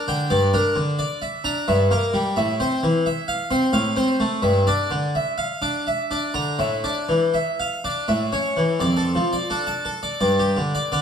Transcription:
0.08 D3 G5
0.30 G2 D5
0.54 D4 A#4
0.76 D3
0.99 D5
1.22 E5
1.44 D4 A#5
1.68 G2 E5
1.91 A#3 A#4
2.14 G3
2.36 A2 E5
2.60 C4 C5
2.83 E3
3.06 E5
3.28 F5
3.51 C4 C6
3.73 A2 F5
3.96 C4 C5
4.20 A3
4.42 G2 E5
4.67 D4 D5
4.91 D3
5.15 E5
5.38 F5
5.62 D4 D6
5.87 E5
6.11 D4 D5
6.34 D3 A#5
6.59 A2 E5
6.84 D4 D5
7.09 E3
7.34 E5
7.60 F5
7.84 D4 D6
8.08 A2 E5
8.33 C#4 C#5
8.57 E3
8.80 F2 D5
8.97 A4
9.15 F3
9.33 D5
9.50 D4 A4
9.67 A5
9.85 A4
10.03 D5
10.21 G2 D5
10.39 G4
10.57 D3
10.75 D5
10.92 D3 D5

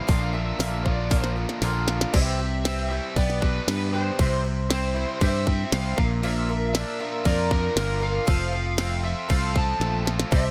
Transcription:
Already playing: F5
0.07 A#1 A#2 D3 A#3 D4 F4, kick, open hi-hat
0.33 A#3 D4 F4 E5
0.59 A#1 A#2 D3 A#3 D4 F4 E5, snare, open hi-hat
0.84 A#2 D3 A#3 D4 F4 D5, kick
1.10 D3 A#3 D4 F4, kick, snare, open hi-hat
1.24 snare
1.36 A#3 D4 F4
1.49 snare
1.62 A#1 A#2 D3 A#3 D4 F4, snare, open hi-hat
1.88 A#3 D4 F4, snare
2.01 snare
2.13 C2 C3 E3 G3 C4 G4 E5, kick, crash
2.39 G3 C4 G4
2.64 E3 G3 C4 G4, snare, crash
2.89 G3 C4 E4 G4 E5
3.16 B1 B3 D4 G4 B4 D5, kick, crash
3.30 snare
3.40 G4 B4, kick
3.44 D4
3.68 G2 B3 D4 G4 B4, snare, crash
3.94 D4 G4 B4 C5
4.19 C2 C3 E3 G3 C4 E4 C5, kick, crash
4.44 G3 C4 E4 C5
4.70 G3 C4 E4 C5, snare, crash
4.96 G3 C4 E4 C5
5.20 G2 C3 E3 G3 C4 E4 C5 E5, kick, crash
5.46 G3 C4 E4 C5, kick
5.71 C2 G3 C4 E4 C5 F5, snare, crash
5.96 A#1 A#2 A#3 D4 F4 A#4, kick
6.23 A#2 F3 A#3 D4 F4 A#4 E5, crash
6.49 A#3 D4 F4 A#4
6.74 A#3 D4 F4 A#4 E5, snare, crash
6.99 A#3 D4 F4 A#4 E5
7.24 F2 A#2 F3 A#3 D4 F4 A#4 D5, kick, crash
7.51 A#3 D4 F4 A#4, kick
7.76 G1 A#3 D4 F4 A#4, snare, crash
8.00 A#3 D4 F4 A#4 F5
8.25 F1 F3 A3 C4 F4 A4, kick, crash
8.52 C4 F4 A4
8.77 A3 C4 F4 A4, snare, crash
9.03 C4 F4 A4 E5
9.28 C2 F3 A3 C4 F4 A4 F5, kick, crash
9.54 C4 F4 A4 A5, kick
9.80 A#1 A3 C4 F4 A4, snare
10.05 C4 F4 A4, snare
10.20 snare
10.31 C2 C3 E3 G3 C4 E4 C5, kick, crash
10.36 E5

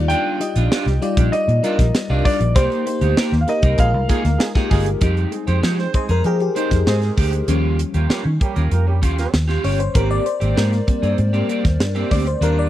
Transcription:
Already playing: D#2 G3 D#4 F4 D5
0.08 G3 D4 F4 G5, closed hi-hat
0.40 G3 D#4 F4 D#5, muted clean electric guitar stroke, closed hi-hat
0.56 A#1 G3 D4 F4, closed hi-hat
0.72 G3 D4 F4, snare
0.86 C2, muted clean electric guitar stroke, snare, closed hi-hat
1.02 G3 D#4 F4 D5, muted clean electric guitar stroke, closed hi-hat
1.17 A#1 G3 D4 G4, kick, closed hi-hat
1.32 G3 D#4 F4 D5 D#5, muted clean electric guitar stroke, closed hi-hat
1.48 A#2, muted clean electric guitar stroke, closed hi-hat
1.63 G3 D4 D#4 F4 A#4, closed hi-hat
1.79 A#1, muted clean electric guitar stroke, kick, snare, closed hi-hat
1.95 muted clean electric guitar stroke, snare
2.09 C2 G3 D4 D#4 F4 D5
2.25 G3 D4 F4 D5, kick, open hi-hat
2.40 A#1, muted clean electric guitar stroke, closed hi-hat
2.55 C2 A#3 D#4 G4 C5, kick, closed hi-hat
2.72 closed hi-hat
2.86 A#3 D#4 G4 C5, muted clean electric guitar stroke, closed hi-hat
3.01 D2 A#3 D#4 G4, closed hi-hat
3.17 A#3 D#4 G4, snare
3.32 D#2, muted clean electric guitar stroke, snare
3.41 F5
3.47 A#3 D#4 G4 A#4 D#5, muted clean electric guitar stroke, closed hi-hat
3.62 C2 A#3 D#4 A#4, kick, closed hi-hat
3.78 A#1 G#3 D#4 F4 G#4 A#4 F5, muted clean electric guitar stroke, kick, closed hi-hat
3.94 C2, muted clean electric guitar stroke
4.08 G#3 A#3 D#4 F4 G#4 A#4, kick, closed hi-hat
4.25 D2, muted clean electric guitar stroke, snare, closed hi-hat
4.39 G#3 D#4 F4 G#4, muted clean electric guitar stroke, snare
4.55 G#3 A#3 D#4 F4 G4 G#4, kick, snare
4.70 G1 G#3 A#3 D#4 F4 G#4, kick, open hi-hat
4.86 muted clean electric guitar stroke, closed hi-hat
5.01 F2 G3 G#3 D#4 G4, kick, closed hi-hat
5.17 closed hi-hat
5.32 G#3 C4 D#4 G#4, muted clean electric guitar stroke, closed hi-hat
5.47 F2 G#3 C4 D#4 G4 G#4 C5, closed hi-hat
5.63 F3 G#3 D#4 G4, snare
5.78 C4 G#4 C5, muted clean electric guitar stroke, snare
5.94 G#3 C4 D#4 G#4 C5, muted clean electric guitar stroke, kick, closed hi-hat
6.09 F2 G#3 D#4 G#4 A#4, closed hi-hat
6.24 F3 A#3 D#4 G4 G#4 A#4, muted clean electric guitar stroke, closed hi-hat
6.40 G4, muted clean electric guitar stroke, closed hi-hat
6.55 G#3 C4 D#4 G4 G#4 C5, closed hi-hat
6.71 F2, muted clean electric guitar stroke, kick, snare, closed hi-hat
6.86 G#2 G#3 C4 D#4 G#4 C5, muted clean electric guitar stroke, snare
7.02 muted clean electric guitar stroke, snare, closed hi-hat
7.17 D2 G#3 D#4 G4, kick, open hi-hat
7.32 muted clean electric guitar stroke, closed hi-hat
7.48 D#2 F3 G3 C#4 F4 G4, closed hi-hat
7.79 muted clean electric guitar stroke, closed hi-hat
7.94 D#2 A#3 C#4 F4 G4 A#4, closed hi-hat
8.09 G3 A#3 C#4 F4 G4, snare
8.25 D#3, muted clean electric guitar stroke
8.40 G3 A#3 C#4 G4, muted clean electric guitar stroke, kick, closed hi-hat
8.56 D#2 C#4 F4 A#4, closed hi-hat
8.71 F2 A#3 F4 G4 A#4, muted clean electric guitar stroke, closed hi-hat
8.87 G3 A#3 C#4 G4, muted clean electric guitar stroke
9.02 D#2 C#4 F4 G4, kick, closed hi-hat
9.17 A#3 F4 G4 A#4, muted clean electric guitar stroke, snare, closed hi-hat
9.33 D#2, muted clean electric guitar stroke, snare
9.48 C#4 F4 G4, snare, closed hi-hat
9.64 G1 C#4 F4 G4 C#5, open hi-hat
9.79 C5, muted clean electric guitar stroke, closed hi-hat
9.94 G#1 A#3 C4 G4 A#4, kick, closed hi-hat
10.11 D5, closed hi-hat
10.26 C5, muted clean electric guitar stroke, closed hi-hat
10.40 G#1 A#3 C4 G4, closed hi-hat
10.56 G#2 A#3 C4 G4 A#4, snare
10.72 muted clean electric guitar stroke, snare, closed hi-hat
10.87 G3 A#3 C4, muted clean electric guitar stroke, kick, closed hi-hat
11.02 G2 A#3 C4 G#4, closed hi-hat
11.18 G#2, muted clean electric guitar stroke, closed hi-hat
11.33 A#3 C4 G4, closed hi-hat
11.49 A#3 C4 G4, closed hi-hat
11.64 D#2, muted clean electric guitar stroke, kick, snare, closed hi-hat
11.80 G2, muted clean electric guitar stroke, snare
11.95 A#3 C4 G4, closed hi-hat
12.10 D2 A#3 C4 G4 D5, kick, open hi-hat
12.26 C5, muted clean electric guitar stroke, closed hi-hat
12.41 D#2 G3 D4 F4 A#4, closed hi-hat
12.59 D5

